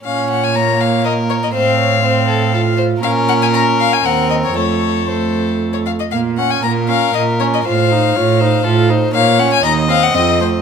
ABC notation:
X:1
M:3/4
L:1/16
Q:1/4=119
K:Bbm
V:1 name="Violin"
f2 g a b2 f2 e2 d e | f8- f2 z2 | f2 g a b2 f a g2 e d | d4 c4 z d f e |
f2 g a b2 f2 e2 d e | f8- f2 z2 | f2 g a b2 f g e2 c2 |]
V:2 name="Violin"
d8 B4 | c2 d2 c2 =A2 A2 c2 | B8 B4 | =A8- A2 z2 |
z4 B8 | c4 d2 c2 =A2 c2 | d4 e8 |]
V:3 name="Viola"
D4 B,8 | C4 C4 F4 | D4 D4 C4 | =A,4 A,6 z2 |
B,2 D2 B,2 D2 B,2 D2 | F2 E2 F2 E2 F2 E2 | B,2 D2 E2 C2 C2 =A,2 |]
V:4 name="Cello" clef=bass
B,,12 | =A,,12 | B,,8 E,,4 | F,,8- F,,2 z2 |
B,,4 B,,4 B,,4 | =A,,4 A,,4 A,,4 | B,,4 E,,4 F,,4 |]